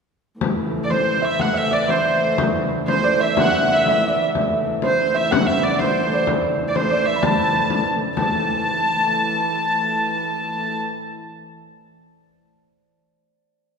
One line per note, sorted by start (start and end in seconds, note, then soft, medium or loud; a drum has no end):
0.41 4.35 A2 medium
0.41 4.36 E3 medium
0.41 frame drum medium
0.58 frame drum soft
0.84 0.91 D5 medium
0.90 1.88 C5 medium
0.90 1.25 C5 medium
0.90 frame drum medium
1.07 frame drum soft
1.22 1.53 E5 medium
1.22 1.41 E5 medium
1.22 frame drum soft
1.39 3.00 F#5 medium
1.39 1.57 F#5 medium
1.39 frame drum medium
1.54 3.19 E5 medium
1.54 1.73 E5 medium
1.54 frame drum soft
1.71 3.03 D5 medium
1.71 1.90 D5 medium
1.88 2.88 C5 medium
1.88 2.39 C5 medium
1.88 frame drum medium
2.38 frame drum medium
2.55 frame drum soft
2.87 3.21 C5 medium
2.87 4.83 C5 medium
2.87 frame drum medium
3.04 4.07 D5 medium
3.04 frame drum soft
3.20 3.71 E5 medium
3.20 3.43 E5 medium
3.20 frame drum soft
3.37 3.51 F#5 medium
3.37 3.53 F#5 medium
3.37 frame drum medium
3.43 3.51 E5 medium
3.52 5.13 F#5 medium
3.52 3.71 F#5 medium
3.52 frame drum soft
3.71 3.88 E5 medium
3.71 3.90 E5 medium
3.71 frame drum soft
3.86 5.14 E5 medium
3.86 frame drum medium
3.90 4.22 E5 medium
4.08 5.64 D5 medium
4.35 8.18 A2 medium
4.35 8.19 E3 medium
4.35 frame drum medium
4.51 frame drum soft
4.82 5.82 C5 medium
4.82 5.16 C5 medium
4.82 frame drum medium
5.00 frame drum soft
5.14 6.87 E5 medium
5.14 5.32 E5 medium
5.14 frame drum soft
5.31 6.92 F#5 medium
5.31 5.48 F#5 medium
5.31 frame drum medium
5.47 5.63 E5 medium
5.47 frame drum soft
5.63 5.79 D5 medium
5.63 6.13 D5 medium
5.79 6.24 C5 medium
5.79 6.75 C5 medium
5.79 frame drum medium
5.96 frame drum soft
6.12 6.91 D5 medium
6.12 frame drum soft
6.27 frame drum medium
6.44 frame drum soft
6.68 6.76 D5 medium
6.76 7.22 C5 medium
6.76 7.07 C5 medium
6.76 frame drum medium
6.91 8.76 D5 medium
6.91 frame drum soft
7.06 7.23 E5 medium
7.06 frame drum soft
7.16 8.51 B5 medium
7.23 7.86 A5 medium
7.23 8.18 A5 medium
7.23 frame drum medium
7.70 frame drum medium
8.16 10.81 A2 medium
8.16 10.82 E3 medium
8.16 10.77 A5 medium
8.16 11.49 A5 medium
8.16 frame drum medium